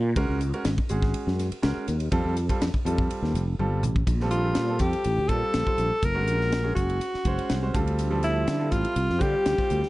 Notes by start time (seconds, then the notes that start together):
Already playing: A#2
0.16 C#2 G#3 C#4 F#4 A#4, kick, ride
0.29 C#2
0.41 F#4 G#4, hi-hat pedal, ride
0.53 G#3 C#4 F#4 A#4, ride
0.65 G#1 F#4 B4, snare, ride
0.78 muted fretless electric bass stroke, kick
0.89 G#1 G#3 C#4 F#4 G#4, hi-hat pedal, ride
1.02 kick, snare
1.14 muted fretless electric bass stroke, ride
1.27 F#2, snare
1.39 snare, hi-hat pedal, ride
1.51 F#4 A#4, muted fretless electric bass stroke, ride
1.62 C#2 G#3 C#4 F#4 A#4, snare, ride
1.77 muted fretless electric bass stroke
1.88 D#2 F#4 A#4, hi-hat pedal, ride
2.00 ride
2.12 F2 G3 C4 F4 A4, kick, ride
2.25 F2
2.36 F4 A4, hi-hat pedal, ride
2.49 G3 C4 F4 A4, kick, ride
2.61 F2 F4 G4, snare, ride
2.74 muted fretless electric bass stroke, kick
2.85 F2 G3 C4 F4 A4, hi-hat pedal, ride
2.98 kick
3.10 ride
3.22 D#2, snare
3.34 F1, hi-hat pedal, ride
3.47 F4 A4
3.59 G1 G3 C4 F4 A4, high tom
3.83 A1 F4 G4, hi-hat pedal, mid tom
3.96 kick
4.07 A#1, kick, hi-hat pedal, ride
4.20 G3 C4 F4 A4, snare
4.31 F4, hi-hat pedal, ride
4.55 A#2, snare, hi-hat pedal, ride
4.69 G3 C4 F4 A4
4.79 F2 G4, kick, snare, hi-hat pedal, ride
4.93 ride
5.04 A1 F4 G4, hi-hat pedal, ride
5.18 D2
5.29 A#2 G3 C4 F4 A4, kick, hi-hat pedal, ride
5.54 A#1, snare, hi-hat pedal, ride
5.67 G3 C4 F4 C5, kick
5.78 A#1, hi-hat pedal, ride
5.91 F4 A4
6.03 F#1 A#4, kick, hi-hat pedal, ride
6.15 G#3 C#4 F#4 A#4
6.27 A#1, hi-hat pedal, ride
6.41 snare
6.52 snare, hi-hat pedal, ride
6.63 G#3 C#4 F#4 G#4
6.75 F#1 F#4, kick, hi-hat pedal, ride
6.89 ride
7.01 C5, hi-hat pedal, ride
7.14 muted fretless electric bass stroke, snare
7.25 F#1 G#3 C#4 F#4 C5, kick, hi-hat pedal, ride
7.39 ride
7.49 C2, snare, hi-hat pedal, ride
7.63 G#3 C#4 F#4 C5
7.74 D2 G3 C4 F4 A4, kick, hi-hat pedal, ride
7.87 ride
7.99 hi-hat pedal, ride
8.10 F3 G3 C4 A4
8.23 E4, snare, hi-hat pedal, ride
8.47 D3, snare, hi-hat pedal, ride
8.59 G3 C4 F4 A4
8.71 A1 F4, kick, hi-hat pedal, ride
8.85 ride
8.96 C2 F4 A4, hi-hat pedal, ride
9.10 F2, snare
9.19 D3 G3 C4 F4 G4, kick, hi-hat pedal, ride
9.46 D2, snare, hi-hat pedal, ride
9.58 G3 C4 F4 C5, kick, snare
9.70 D2, hi-hat pedal, ride
9.81 F4 G4, snare